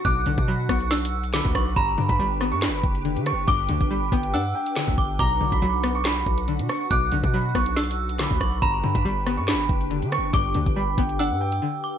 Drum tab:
HH |x-----x-----------x--x--x-x-x----x--------------|x--------x--------x--------------x--x--x--x-----|x-----x-----------x--x--x--------x--------------|x--------x--------x--------------x--x--x--x-----|
CP |------------------------------------x-----------|------------------------x-----------------------|------------------------------------x-----------|------------------------x-----------------------|
SD |------------------r-----o-----------o-----r-----|------------------r-----o-----------------r-----|------------------------------------o-----------|------------------r-----o-----------------r-----|
BD |o--------o--------o--------------------o--o-----|o--------o--------------------o-----------------|o--------o--------o--------------------o--o-----|o--------o--------------------o-----------------|

HH |x-----x-----------x--x--x-x-x----x--------------|x--------x--------x--------------x--x--x--x-----|x-----x-----------x--x--x--------x--------------|
CP |------------------------------------x-----------|------------------------x-----------------------|------------------------------------------------|
SD |------------------r-----o-----------o-----r-----|------------------r-----o-----------------r-----|------------------------------------------------|
BD |o--------o--------o--------------------o--o-----|o--------o--------------------o-----------------|o--------o--------o-----------------------------|